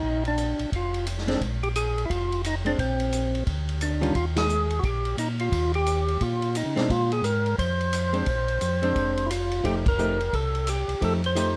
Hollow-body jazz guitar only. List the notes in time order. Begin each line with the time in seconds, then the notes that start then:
1.27 G#3 C4 D4
2.65 G#3 C4 D4
4.01 D#3 G3 C#4 F4
6.76 G#3 C4 D4
8.13 G#3 C4 D4
8.82 G#3 C4 D4
9.63 F3 A3 D#4 G4
9.98 F3 A3 D#4 G4
11.01 F3 A3 D#4 G4
11.35 F3 A3 D#4 G4